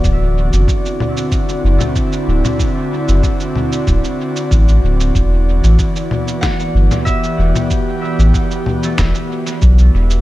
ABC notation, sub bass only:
X:1
M:4/4
L:1/16
Q:1/4=94
K:Em
V:1 name="Sub bass" clef=bass
D,,,3 F,,, z6 F,,, z3 D,,, z | z3 F,,, z4 D,,, z3 A,,,2 D,,,2 | E,,,3 A,,, z6 G,,, z3 E,,, z | z3 A,,, z4 E,,, z3 B,,,2 E,,,2 |]